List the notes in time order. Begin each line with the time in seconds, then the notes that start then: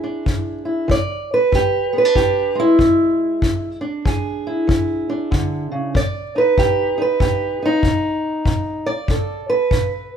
Already playing: E3 E4 G#4
0.04 D4
0.26 E3, kick
0.65 E4
0.88 E3 D5, kick
1.34 B4
1.52 E3 G4, kick
1.93 B3
1.98 B4
2.05 D4
2.16 E3 G4, kick
2.55 G#3
2.60 E4
2.79 E3, kick
3.42 E3, kick
3.81 D4
4.05 E3 G#4, kick
4.47 E4
4.67 E3, kick
5.10 D4
5.31 D3, kick
5.72 C#3
5.94 B2 D5, kick
6.36 D#4 B4
6.58 B2 G4, kick
6.98 D#4 B4
7.20 B2 G4, kick
7.62 D#4
7.83 B2, kick
8.46 B2, kick
8.86 D5
9.08 B2 A4, kick
9.50 B4
9.71 B2, kick